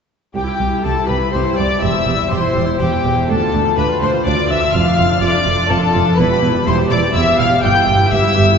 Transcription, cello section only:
0.35 0.43 C2 medium
0.60 0.68 C2 medium
0.84 0.92 C2 medium
1.09 1.17 C2 medium
1.34 1.42 C2 medium
1.58 1.66 C2 medium
1.82 1.90 E2 medium
2.07 2.15 E2 medium
2.32 2.40 E2 medium
2.56 2.64 E2 medium
2.80 2.88 E2 medium
3.04 3.12 E2 medium
3.29 3.37 D2 medium
3.53 3.61 D2 medium
3.76 3.84 D2 medium
4.01 4.09 D2 medium
4.25 4.33 D2 medium
4.49 4.57 D2 medium
4.73 4.81 F2 medium
4.97 5.05 F2 medium
5.21 5.29 F2 medium
5.46 5.54 F2 medium
5.69 5.77 F2 medium
5.93 6.01 F2 medium
6.17 6.25 E2 medium
6.42 6.50 E2 medium
6.67 6.75 E2 medium
6.90 6.98 E2 medium
7.15 7.23 E2 medium
7.39 7.47 E2 medium
7.63 7.71 G2 medium
7.88 7.96 G2 medium
8.12 8.20 G2 medium
8.36 8.44 G2 medium

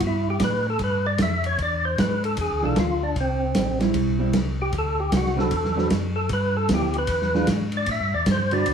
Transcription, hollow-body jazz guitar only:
2.61 2.75 E3 medium
2.61 2.75 G#3 medium
2.61 2.76 D4 medium
2.61 2.76 F4 medium
3.80 4.17 G3 medium
3.80 4.18 C4 medium
3.80 4.18 E4 medium
4.19 4.32 G3 medium
4.19 4.33 C4 medium
4.19 4.33 E4 medium
5.36 5.50 D3 medium
5.36 5.50 C4 medium
5.36 5.51 F#4 medium
5.36 5.51 B4 medium
5.76 5.90 D3 medium
5.76 5.90 C4 medium
5.76 5.90 F#4 medium
5.76 5.90 B4 medium
6.70 6.93 F3 medium
6.70 6.93 B3 medium
6.70 6.93 E4 medium
7.34 7.47 E3 medium
7.34 7.48 G#3 medium
7.34 7.48 D4 medium
7.34 7.48 F4 medium
8.52 8.74 D3 medium
8.52 8.74 C4 medium
8.52 8.74 F#4 medium
8.52 8.74 B4 medium

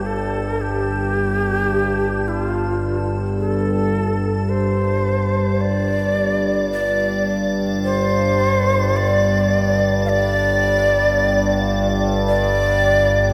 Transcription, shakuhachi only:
0.06 0.63 A4 medium
0.61 2.29 G4 loud
2.28 2.40 E4 medium
2.40 3.11 F4 medium
3.39 4.50 A4 medium
4.49 5.63 C5 medium
5.61 6.71 D5 loud
6.72 7.52 D5 medium
7.84 8.98 C5 loud
8.97 10.05 D5 loud
10.05 11.96 D5 loud
10.05 10.10 F5 loud
12.28 13.33 D5 loud

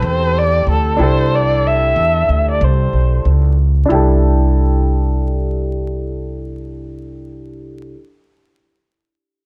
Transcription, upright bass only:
0.02 0.64 E2 loud
0.67 0.98 D2 medium
0.99 1.92 C2 medium
1.96 2.27 E2 medium
2.29 2.59 D2 medium
2.61 2.92 C2 medium
2.93 3.24 B1 medium
3.25 3.87 C#2 medium
3.90 7.94 C2 medium

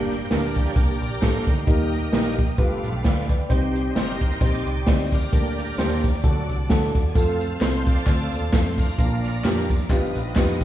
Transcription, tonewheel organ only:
0.00 0.17 G3 medium
0.00 0.56 A#3 medium
0.00 0.18 D4 medium
0.00 0.26 G4 medium
0.25 0.31 C5 medium
0.31 0.56 D4 medium
0.31 0.77 G4 medium
0.31 0.67 A#4 medium
0.57 0.75 G3 soft
0.57 0.75 A#3 soft
0.57 0.75 D4 soft
0.71 0.76 C#5 medium
0.77 1.47 G4 medium
0.77 1.46 A#4 medium
0.77 1.19 D5 medium
1.21 1.47 C5 medium
1.47 1.67 D#4 medium
1.47 2.35 G4 medium
1.47 2.35 A#4 medium
1.67 2.35 G3 medium
1.67 2.35 A#3 soft
1.67 2.36 D#4 medium
2.59 3.26 A3 soft
2.59 3.27 B3 soft
2.59 3.27 F4 medium
3.49 4.17 G3 soft
3.49 4.38 C4 medium
3.49 3.95 D#4 medium
3.49 3.91 G4 medium
3.89 3.96 C5 medium
3.96 4.83 D#4 medium
3.96 4.40 G4 medium
3.96 4.43 A#4 medium
4.41 5.13 G4 medium
4.41 4.88 D5 medium
4.87 5.05 C5 medium
5.05 5.12 D#5 medium
5.14 6.01 G4 medium
5.14 6.01 A#4 medium
5.14 6.01 D5 medium
5.34 6.01 G3 soft
5.34 6.01 A#3 soft
5.34 6.01 D4 medium
6.24 6.56 F#3 soft
6.24 6.56 A3 soft
6.24 6.56 D4 medium
7.09 7.15 G#4 medium
7.15 7.47 F3 medium
7.15 7.48 A3 soft
7.15 8.03 C4 medium
7.15 7.86 F4 medium
7.15 7.59 A4 medium
7.62 7.85 C5 medium
7.88 8.75 F4 medium
7.88 8.75 A4 medium
7.88 8.50 D5 medium
8.54 8.80 C5 medium
8.79 8.98 D4 medium
8.79 9.66 F4 medium
8.79 9.66 A#4 medium
8.98 9.66 F3 medium
8.98 9.66 A#3 soft
8.98 9.67 D4 medium
9.90 10.58 F3 soft
9.90 10.58 B3 soft
9.90 10.58 D#4 medium

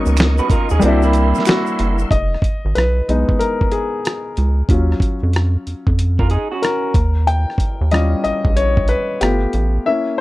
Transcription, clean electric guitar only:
0.39 0.50 F#4 medium
0.39 0.50 B4 medium
0.51 0.70 F4 medium
0.51 0.70 A#4 medium
0.71 0.82 D#4 medium
0.71 0.82 G#4 medium
0.84 1.03 C4 medium
0.84 1.02 F#4 medium
1.04 1.96 A#3 medium
1.04 1.96 E4 medium
6.20 6.30 F4 medium
6.20 6.30 A#4 medium
6.31 6.50 D#4 medium
6.31 6.50 G#4 medium
6.52 6.93 C#4 medium
6.52 6.93 F#4 medium

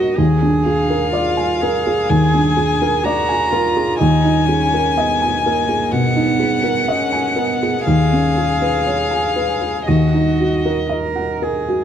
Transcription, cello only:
0.00 0.19 F#4 soft
0.17 1.13 G#4 medium
1.14 1.63 F4 medium
1.61 3.05 G#4 medium
3.04 3.52 F#4 medium
3.51 4.00 F4 medium
3.98 4.48 D#4 medium
4.46 4.97 C#4 medium
4.96 5.44 B3 medium
5.45 5.94 A#3 soft
5.92 6.90 B3 medium
6.89 7.39 C#4 medium
7.37 7.86 B3 soft
7.87 9.89 G#4 medium
9.87 10.80 F#4 soft
10.91 11.44 A#4 soft
11.43 11.84 G#4 soft

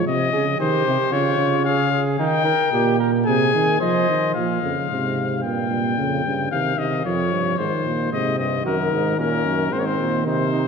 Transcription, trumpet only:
0.07 0.58 D#5 medium
0.60 1.14 C5 medium
1.13 1.64 C#5 medium
1.65 2.04 F5 medium
2.19 2.97 G5 medium
3.26 3.77 G#5 medium
3.81 4.34 D#5 medium
4.35 5.39 F5 medium
5.42 6.49 G5 medium
6.51 6.80 F5 medium
6.78 7.05 D#5 medium
7.05 7.60 C#5 medium
7.58 8.12 C5 medium
8.12 8.38 D#5 medium
8.39 8.65 D#5 medium
8.66 9.18 A#4 medium
9.19 9.74 A#4 medium
9.73 9.81 C5 medium
9.79 9.87 C#5 medium
9.86 10.26 C5 medium
10.27 10.68 C5 medium

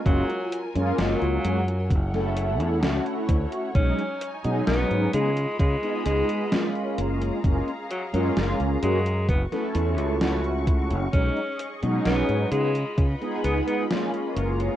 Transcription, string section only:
0.00 1.88 F4 medium
0.00 1.88 A#4 medium
0.00 1.88 G#5 loud
1.91 3.73 D3 medium
1.91 5.11 C#5 medium
1.91 3.73 F#5 medium
3.76 5.12 D#4 medium
3.76 5.13 G#5 medium
5.14 6.97 F4 medium
5.14 6.97 D#5 medium
5.14 6.96 B5 medium
6.98 9.27 G#4 medium
6.98 9.26 F5 medium
6.98 9.27 A#5 medium
9.29 11.12 F#4 medium
9.29 12.49 C#6 medium
11.13 12.50 G#4 medium
11.13 14.33 D#5 medium
12.52 14.35 F4 medium
12.52 14.35 B5 medium
14.37 14.76 G#4 medium
14.37 14.76 F5 medium
14.37 14.76 A#5 medium

